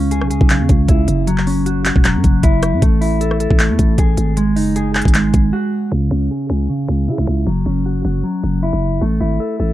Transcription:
Already playing: 808-style bass C#2, clean electric guitar C#3 C#4
0.11 clean electric guitar G#4, closed hi-hat
0.21 808-style bass B1, cross-stick
0.30 808-style bass C#2, clean electric guitar G#4, closed hi-hat
0.41 808-style bass B1, kick
0.50 clean electric guitar C#3, clap, closed hi-hat
0.60 808-style bass E2
0.69 808-style bass C#2, kick, closed hi-hat
0.88 808-style bass C#2, clean electric guitar E4, kick, closed hi-hat
1.08 808-style bass F#1, closed hi-hat
1.27 clean electric guitar F#3, closed hi-hat
1.38 clap
1.47 clean electric guitar C#4, open hi-hat
1.66 clean electric guitar F#4, closed hi-hat
1.85 clean electric guitar F#4, clap, closed hi-hat
1.96 808-style bass E1, kick
2.04 clean electric guitar F#3, clap, closed hi-hat
2.15 808-style bass F#2
2.24 808-style bass F#1, kick, closed hi-hat
2.43 808-style bass F#1, clean electric guitar E4, kick, closed hi-hat
2.63 cross-stick, closed hi-hat
2.73 808-style bass F#2
2.82 808-style bass A1, clean electric guitar A3, kick, closed hi-hat
3.01 clean electric guitar E4, open hi-hat
3.21 clean electric guitar A4, closed hi-hat
3.31 cross-stick
3.40 clean electric guitar A4, closed hi-hat
3.51 808-style bass A1, kick
3.59 clean electric guitar A3, clap, closed hi-hat
3.70 808-style bass E2
3.79 808-style bass A1, kick, closed hi-hat
3.98 808-style bass A1, clean electric guitar G#4, kick, closed hi-hat
4.17 808-style bass G#1, closed hi-hat
4.37 clean electric guitar G#3, closed hi-hat
4.56 808-style bass F#1, clean electric guitar D#4, open hi-hat
4.76 clean electric guitar G#4, closed hi-hat
4.94 clean electric guitar G#4, clap, closed hi-hat
5.02 808-style bass G#1, kick, closed hi-hat
5.08 closed hi-hat
5.14 clean electric guitar G#3, clap, closed hi-hat
5.34 808-style bass G#1, kick, closed hi-hat
5.53 clean electric guitar F#4
5.92 808-style bass C#2, clean electric guitar C#3
6.11 808-style bass C#2, clean electric guitar C#4
6.31 clean electric guitar G#4
6.50 808-style bass C#2, clean electric guitar G#4
6.69 clean electric guitar C#3
6.89 808-style bass C#2
7.08 808-style bass C#3, clean electric guitar E4
7.18 808-style bass C#2
7.27 808-style bass C#2
7.47 808-style bass F#1, clean electric guitar F#3
7.66 808-style bass F#1, clean electric guitar C#4
7.86 clean electric guitar F#4
8.05 808-style bass F#1, clean electric guitar F#4
8.24 clean electric guitar F#3
8.44 808-style bass F#1
8.63 clean electric guitar E4
8.73 808-style bass F#1
9.02 808-style bass A1, clean electric guitar A3
9.20 808-style bass G#1, clean electric guitar E4
9.40 clean electric guitar A4
9.60 808-style bass A1, clean electric guitar A4

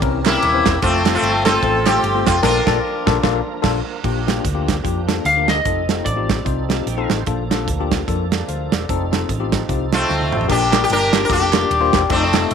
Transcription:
0.01 fingered electric bass C2, tine electric piano C3 C4 C#4 E4 A#4, tonewheel organ E3 C4 C#4 A#4, kick, ride
0.25 sitar G3 A#3 E4, tine electric piano C4 C#4 E4 A#4, snare, clap, ride
0.42 fingered electric bass D#1, ride
0.54 tine electric piano C4 C#4 E4 C5
0.66 fingered electric bass E1, kick, snare, clap, ride
0.82 fingered electric bass F1, tonewheel organ F3 A3 C4 G4, sitar A3 C4 F4, tine electric piano A3 C4 F4 A4, kick, ride
0.88 tonewheel organ A4
1.06 tine electric piano A3 C4 F4 A4, snare, clap, ride
1.14 sitar A3 C4 F4
1.22 fingered electric bass G1, ride
1.45 tine electric piano A3 C4 F4 A4, sitar C4 F4 A4, snare, clap, ride
1.63 fingered electric bass A1, tine electric piano A3 C4 F4 A4, kick, ride
1.86 tine electric piano A3 C4 F4 A4, sitar C4 G4, snare, clap, ride
2.03 fingered electric bass G1, ride
2.15 tine electric piano A3 C4 F4 C5
2.26 fingered electric bass F1, sitar F4, kick, snare, clap, ride
2.43 fingered electric bass A#1, tine electric piano A#2 A#3 D4 F4 A4, tonewheel organ F3 A#3 C4 A#4, sitar D4 F4 A#4, kick, snare, crash
2.48 tonewheel organ D4
2.67 fingered electric bass A#1, tine electric piano A#3 D4 F4 A4, kick, snare
3.06 fingered electric bass A#1, tine electric piano A#3 D4 F4 A4, kick, snare
3.23 fingered electric bass A#1, tine electric piano A#3 D4 F4 A4, kick, snare
3.62 fingered electric bass A#1, tine electric piano A#3 D4 F4 A4, kick, snare, crash
4.03 fingered electric bass A#1, tine electric piano A#2 A#3 D4 F4 G4, tonewheel organ F3 A#3 D4 G4, kick, crash
4.27 tine electric piano A#3 D4 F4 G4, snare, closed hi-hat
4.45 fingered electric bass D2, kick, closed hi-hat
4.54 tine electric piano A#3 D4 F4 G4
4.68 kick, snare, closed hi-hat
4.83 fingered electric bass F2, tine electric piano A#3 D4 F4 G4, kick, closed hi-hat
5.08 tine electric piano A#3 D4 F4 A4, snare, closed hi-hat
5.25 fingered electric bass D2, electric slide guitar F5, closed hi-hat
5.37 tine electric piano A#3 D4 F4 A#4
5.48 electric slide guitar D#5, snare, closed hi-hat
5.65 fingered electric bass F1, tonewheel organ F3 C4 D#4 A4, tine electric piano C4 D#4 F4 A4, kick, closed hi-hat
5.89 tine electric piano C4 D#4 F4 A4, snare, closed hi-hat
6.05 fingered electric bass A1, electric slide guitar D5, kick, closed hi-hat
6.17 tine electric piano C4 D#4 F4 G4
6.29 kick, snare, closed hi-hat
6.45 fingered electric bass C2, tine electric piano C4 D#4 F4 C5, kick, closed hi-hat
6.69 tine electric piano C4 D#4 F4 G4, tonewheel organ A5, snare, closed hi-hat
6.86 fingered electric bass A#1, tonewheel organ G5, closed hi-hat
6.98 tine electric piano C4 D#4 F4 A4, tonewheel organ F5
7.10 fingered electric bass A1, snare, closed hi-hat
7.14 tonewheel organ C5
7.26 fingered electric bass A#1, tine electric piano A#2 A#3 D4 F4 A4, tonewheel organ F3 A#3 D4 A4, kick, closed hi-hat
7.51 tine electric piano A#3 D4 F4 A4, snare, closed hi-hat
7.68 fingered electric bass D2, kick, closed hi-hat
7.80 tine electric piano A#3 D4 F4 G4
7.92 kick, snare, closed hi-hat
8.08 fingered electric bass F2, tine electric piano A#3 D4 F4 A4, kick, closed hi-hat
8.32 tine electric piano A4 D5, snare, closed hi-hat
8.48 fingered electric bass D2, tine electric piano C5 F5, closed hi-hat
8.72 fingered electric bass E1, tine electric piano A4 D5, snare, closed hi-hat
8.89 fingered electric bass F1, tonewheel organ F3 C4 D#4 A4, tine electric piano C4 D#4 F4 A4, kick, closed hi-hat
9.12 tine electric piano C4 D#4 F4 A4, snare, closed hi-hat
9.29 fingered electric bass A1, kick, closed hi-hat
9.40 tine electric piano C4 D#4 F4 G4
9.52 kick, snare, closed hi-hat
9.69 fingered electric bass C2, tine electric piano C4 D#4 F4 G4, kick, closed hi-hat
9.92 sitar A3 C4 F4, tine electric piano D#5 A5, snare, closed hi-hat
10.09 fingered electric bass D2, tine electric piano C5 F5, snare
10.21 high tom
10.32 fingered electric bass A1, tine electric piano G4 C5, mid tom
10.41 floor tom
10.48 fingered electric bass A#1, tine electric piano A#2 A#3 D4 F4 G4 A#4, sitar D4 G4, kick, crash
10.72 tine electric piano A#3 D4 F4 G4 A#4, snare, clap, ride
10.84 sitar G4
10.90 fingered electric bass G1, sitar D4 G4 A#4, ride
11.13 tine electric piano A#3 D4 F4 G4 A#4, snare, clap, ride
11.25 sitar A#4
11.29 fingered electric bass F1, tine electric piano A#3 D4 F4 G4 A4, sitar D4 G4, kick, ride
11.53 tine electric piano A#3 D4 F4 G4 A#4, snare, clap, ride
11.70 fingered electric bass D#1, ride
11.80 tine electric piano A#3 D4 F4 G4 C5
11.93 fingered electric bass E1, kick, snare, clap, ride
12.09 fingered electric bass F1, tine electric piano A3 C4 D#4 F4 A4, sitar A3 C4 D#4, kick, ride
12.33 tine electric piano A3 C4 D#4 F4 A4, snare, clap, ride
12.51 fingered electric bass G1, ride

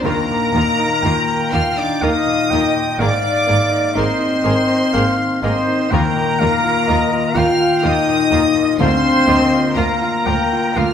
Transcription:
Already playing: harp F3 F4 A#4 F5
0.02 cello section D#2, double bass section D#2, grand piano D#2, harp D#3, viola section D#3 A#3, french horn section A#3, violin section F4 A#4 A#5, flute section A#4
0.30 grand piano A#2
0.53 cello section D#2, double bass section D#2, viola section D#3 A#3, grand piano A#3, harp D#4, violin section F4 A#4
0.79 grand piano D#4
1.02 double bass section D#2, cello section D#2, viola section D#3 A#3, grand piano F4, violin section F4 A#4, clarinet G5
1.28 grand piano A#4
1.51 double bass section D#2, cello section D#2, viola section D#3 A#3, french horn section F4, grand piano F4, violin section F4 A#4 F6, harp F5, flute section F5
1.77 french horn section D4, grand piano D#4, flute section D5, violin section D6
2.02 double bass section D#2, cello section D#2, viola section D#3 A#3, grand piano A#3, french horn section D#4, violin section F4 A#4 D#6, flute section D#5, clarinet F5
2.27 grand piano A#2
2.50 double bass section D#2, cello section D#2, viola section D#3 A#3, grand piano A#3, violin section F4 A#4, harp A#4, clarinet G5
2.75 grand piano A#2
2.99 double bass section G#1, grand piano G#2, harp G#2, cello section G#2, viola section D#3 A#3, violin section G#4 A#4 D6, flute section D5, french horn section D5, clarinet F5
3.23 grand piano D#3
3.47 double bass section G#1, cello section G#2, viola section D#3 A#3, grand piano A#3, harp A#3, violin section G#4 A#4
3.71 grand piano D#4
3.95 double bass section G#1, cello section G#2, viola section D#3 A#3, french horn section C4, violin section G#4 A#4 C6, grand piano A#4, harp A#4, flute section C5, clarinet D#5
4.19 grand piano D#4
4.43 double bass section G#1, cello section G#2, viola section D#3 A#3, violin section G#4 A#4, grand piano A#4, harp D#5
4.68 grand piano D#4
4.93 double bass section G#1, cello section G#2, viola section D#3 A#3, grand piano A#3, violin section G#4 A#4, harp A#4, clarinet F5
5.18 grand piano D#3
5.42 double bass section G#1, cello section G#2, viola section D#3 A#3, grand piano A#3, french horn section C4, harp D#4, violin section G#4 A#4 C6, flute section C5, clarinet D#5
5.67 grand piano D#3
5.91 double bass section D#2, cello section D#2, grand piano D#2, harp D#3, viola section D#3 A#3, french horn section A#3, violin section F4 A#4 A#5, flute section A#4, clarinet G5
6.16 grand piano A#2
6.39 double bass section D#2, cello section D#2, viola section D#3 A#3, harp A#3, grand piano A#3, violin section F4 A#4, clarinet F5
6.64 grand piano F4
6.88 double bass section D#2, cello section D#2, viola section D#3 A#3, violin section F4 A#4, harp A#4, grand piano A#4, clarinet D#5
7.12 grand piano F4
7.35 double bass section D#2, cello section D#2, viola section D#3 A#3, french horn section F4, violin section F4 A#4 F6, grand piano A#4, harp F5, flute section F5, clarinet G5
7.61 grand piano F4
7.82 double bass section D#2, cello section D#2, viola section D#3 A#3, grand piano A#3, french horn section D#4, violin section F4 A#4 D#6, harp A#4, flute section D#5
8.08 grand piano A#2
8.31 double bass section D#2, cello section D#2, viola section D#3 A#3, grand piano A#3, harp F4, violin section F4 A#4
8.56 grand piano A#2
8.79 double bass section D2, cello section D2, grand piano D2, harp D3, viola section F3 A#3, french horn section C4, violin section F4 A#4 C6, flute section C5, clarinet F5
9.04 grand piano D3
9.26 cello section D2, double bass section D2, viola section F3 A#3, harp A#3, grand piano A#3, violin section F4 A#4, clarinet D#5
9.53 grand piano F4
9.75 cello section D2, double bass section D2, viola section F3 A#3, french horn section A#3, violin section F4 A#4 A#5, flute section A#4, harp A#4, grand piano A#4, clarinet F5
10.02 grand piano F4
10.25 double bass section D2, cello section D2, viola section F3 A#3, violin section F4 A#4, grand piano A#4, harp F5, clarinet G5
10.52 grand piano F4
10.75 cello section D2, double bass section D2, viola section F3 A#3, grand piano A#3, violin section F4 A#4 F6, french horn section F4, harp A#4, flute section F5, clarinet F5

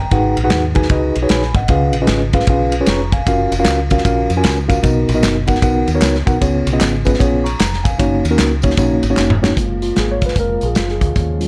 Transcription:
Already playing: tine electric piano A#5
0.00 tine electric piano G5
0.11 fingered electric bass G#1, tine electric piano G#2 D#4 F#4 G#4 B4 F#5, kick, ride bell
0.37 fingered electric bass A#1, ride bell
0.44 tine electric piano D#4 F#4 G#4 B4 F#5
0.50 fingered electric bass D#2, snare, ride bell
0.75 tine electric piano D#4 F#4 G#4 B4 G#5, kick, ride bell
0.82 snare
0.90 fingered electric bass C#2, tine electric piano D#4 F#4 G#4 B4 D#5, kick, ride bell
1.16 fingered electric bass B1, ride bell
1.22 tine electric piano D#4 F#4 G#4 B4 C#5
1.29 fingered electric bass A#1, tine electric piano G#5 B5, snare, ride bell
1.42 snare
1.54 fingered electric bass G#1, tine electric piano D#5 F#5, kick, ride bell
1.68 fingered electric bass C#2, tine electric piano C#3 C#4 F4 G#4 B4 F5, kick, ride bell
1.93 fingered electric bass A#1, ride bell
2.01 tine electric piano C#4 F4 G#4 B4 D#5
2.07 fingered electric bass G#1, snare, ride bell
2.33 tine electric piano C#4 F4 G#4 B4 F5, kick, ride bell
2.40 snare
2.47 fingered electric bass B1, tine electric piano C#4 F4 G#4 B4 F5, kick, ride bell
2.72 ride bell
2.81 tine electric piano C#4 F4 G#4 B4 C#5
2.86 fingered electric bass F1, tine electric piano A#5 C#6, snare, ride bell
3.12 tine electric piano F5 G#5, kick, ride bell
3.27 fingered electric bass F#1, tine electric piano C#4 F4 F#4 A#4 F5, kick, ride bell, tambourine
3.51 fingered electric bass F1, ride bell, tambourine
3.59 tine electric piano C#4 F4 F#4 A#4 F5
3.64 fingered electric bass C#2, snare, clap, ride bell, tambourine
3.90 tine electric piano C#4 F4 F#4 A#4 F5, kick, ride bell, tambourine
3.98 snare
4.05 fingered electric bass A#1, tine electric piano C#4 F4 F#4 A#4 F5, kick, ride bell, tambourine
4.30 fingered electric bass F2, ride bell, tambourine
4.37 tine electric piano C#4 F4 F#4 A#4 G#5
4.44 fingered electric bass C#2, snare, clap, ride bell, tambourine
4.68 tine electric piano C#4 F4 F#4 A#4 F5, kick, ride bell, tambourine
4.83 fingered electric bass B1, tine electric piano B2 B3 D#4 F#4 A#4 D#5, kick, ride bell, tambourine
5.09 fingered electric bass A#1, ride bell, tambourine
5.14 tine electric piano B3 D#4 F#4 A#4 D#5
5.23 fingered electric bass F#1, snare, clap, ride bell, tambourine
5.47 tine electric piano B3 D#4 F#4 A#4 F#5, kick, ride bell, tambourine
5.55 snare
5.62 fingered electric bass B1, tine electric piano B3 D#4 F#4 A#4 F#5, kick, ride bell, tambourine
5.87 fingered electric bass D#2, ride bell, tambourine
5.94 tine electric piano B3 D#4 F#4 A#4 C#5
6.01 fingered electric bass C#2, snare, clap, ride bell, tambourine
6.15 snare
6.26 fingered electric bass B1, tine electric piano B3 D#4 F#4 A#4 F#5, kick, ride bell, tambourine
6.40 fingered electric bass C#2, tine electric piano C#3 B3 C#4 F4 G#4 C#5, kick, ride bell, tambourine
6.67 fingered electric bass B1, ride bell, tambourine
6.73 tine electric piano B3 C#4 F4 G#4 D#5
6.81 fingered electric bass G#1, snare, clap, ride bell, tambourine
7.05 tine electric piano B3 C#4 F4 G#4 B4, kick, ride bell, tambourine
7.14 snare
7.19 fingered electric bass A#1, tine electric piano B3 C#4 F4 G#4 C#5, kick, ride bell, tambourine
7.44 tine electric piano A#5 C#6, ride bell, tambourine
7.59 fingered electric bass F1, tine electric piano A#5, snare, clap, ride bell, tambourine
7.73 snare
7.84 tine electric piano F5 G#5, kick, ride bell, tambourine
7.98 fingered electric bass F#1, tine electric piano A#3 C#4 D#4 F#4 C#5, kick, ride bell, tambourine
8.24 fingered electric bass D#2, ride bell, tambourine
8.30 tine electric piano A#3 C#4 D#4 F#4 A#4
8.38 fingered electric bass C#2, snare, clap, ride bell, tambourine
8.62 tine electric piano A#3 C#4 D#4 F#4 C#5, kick, ride bell, tambourine
8.70 snare
8.77 fingered electric bass A#1, tine electric piano A#3 C#4 D#4 F#4 C#5, kick, ride bell, tambourine
9.03 fingered electric bass G#1, ride bell, tambourine
9.10 tine electric piano A#3 C#4 D#4 F#4 C#5
9.17 fingered electric bass F1, snare, clap, tambourine
9.30 mid tom
9.42 tine electric piano A#3 C#4 D#4 F#4 C#5, snare, tambourine
9.55 fingered electric bass F#1, french horn section F3 G#3 A#3 F4, tine electric piano G#3 A#3, kick, closed hi-hat
9.82 tine electric piano F4, closed hi-hat
9.96 fingered electric bass G#1, tine electric piano G#4, snare, closed hi-hat
10.12 tine electric piano C#5
10.22 kick, closed hi-hat
10.26 tine electric piano B4, snare
10.36 fingered electric bass F1, tine electric piano G#3 A#3 F4, kick, closed hi-hat
10.40 tine electric piano A#4
10.61 fingered electric bass A#1, tine electric piano G#4, closed hi-hat
10.75 fingered electric bass F#1, tine electric piano F4, snare, closed hi-hat
10.89 tine electric piano G#4, snare
11.01 fingered electric bass D2, kick, closed hi-hat
11.15 fingered electric bass D#2, french horn section C#4, kick, closed hi-hat
11.39 tine electric piano F#3 G#3 C#4 F4, closed hi-hat

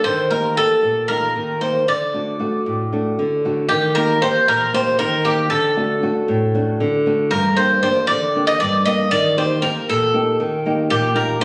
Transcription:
0.04 nylon-string guitar D#3, bouzouki C5
0.31 nylon-string guitar A#3 D#4 G4, bouzouki A#4
0.57 nylon-string guitar A#3 D#4 G4, bouzouki A4
0.83 nylon-string guitar A#2
1.08 nylon-string guitar A#3 D#4 G4, bouzouki A#4
1.36 nylon-string guitar D#3
1.61 nylon-string guitar A#3 D#4 G4, bouzouki C5
1.88 nylon-string guitar D3, bouzouki D5
2.14 nylon-string guitar A3 D4 F#4
2.39 nylon-string guitar A3 D4 F#4
2.66 nylon-string guitar A2
2.92 nylon-string guitar A3 D4 F#4
3.19 nylon-string guitar D3
3.45 nylon-string guitar A3 D4 F#4
3.69 nylon-string guitar D#3, bouzouki G4
3.95 nylon-string guitar A#3 D#4 G4, bouzouki A#4
4.22 nylon-string guitar A#3 D#4 G4, bouzouki C5
4.47 nylon-string guitar A#2, bouzouki A#4
4.73 nylon-string guitar A#3 D#4 G4, bouzouki C5
4.99 nylon-string guitar D#3, bouzouki A#4
5.25 nylon-string guitar A#3 D#4 G4, bouzouki G4
5.50 nylon-string guitar D3, bouzouki A4
5.77 nylon-string guitar A3 D4 F#4
6.02 nylon-string guitar A3 D4 F#4
6.28 nylon-string guitar A2
6.54 nylon-string guitar A3 D4 F#4
6.80 nylon-string guitar D3
7.06 nylon-string guitar A3 D4 F#4
7.31 nylon-string guitar G2, bouzouki A#4
7.57 nylon-string guitar A#3 D4 G4, bouzouki C5
7.82 nylon-string guitar A#3 D4 G4, bouzouki C5
8.07 nylon-string guitar D3, bouzouki D5
8.35 nylon-string guitar A#3 D4 G4
8.47 bouzouki D#5
8.60 nylon-string guitar G2, bouzouki D5
8.85 nylon-string guitar A#3 D4 G4, bouzouki D#5
9.11 nylon-string guitar D#3, bouzouki D5
9.37 nylon-string guitar A#3 D#4 G4, bouzouki C5
9.62 nylon-string guitar A#3 D#4 G4, bouzouki A#4
9.89 nylon-string guitar A#2, bouzouki A4
10.13 nylon-string guitar A#3 D#4 G4
10.40 nylon-string guitar D#3
10.66 nylon-string guitar A#3 D#4 G4
10.90 nylon-string guitar A#2, bouzouki G4
11.14 nylon-string guitar A#3 D#4 G4, bouzouki A#4
11.41 nylon-string guitar A#3, bouzouki C5

